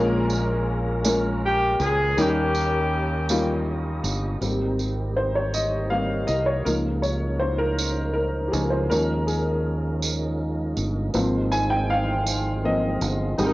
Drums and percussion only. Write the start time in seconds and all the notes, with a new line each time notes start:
0.30 tambourine
1.05 tambourine
1.80 tambourine
2.18 tambourine
2.55 tambourine
3.29 tambourine
4.04 tambourine
4.42 tambourine
4.79 tambourine
5.54 tambourine
6.28 tambourine
6.66 tambourine
7.03 tambourine
7.78 tambourine
8.53 tambourine
8.91 tambourine
9.28 tambourine
10.02 tambourine
10.77 tambourine
11.14 tambourine
11.52 tambourine
12.27 tambourine
13.01 tambourine
13.38 tambourine